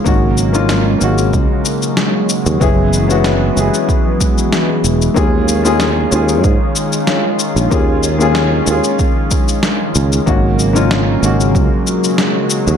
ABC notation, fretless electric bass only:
X:1
M:4/4
L:1/16
Q:"Swing 16ths" 1/4=94
K:Ebm
V:1 name="Fretless electric bass" clef=bass
A,,,6 A,,,2 D,, z6 E,, | G,,,6 G,,, z6 z _F,,, z | E,,6 E,,2 A,, z6 B,,, | E,,6 E,, z6 z D,, z |
A,,,6 A,,,2 D,, z6 E,, |]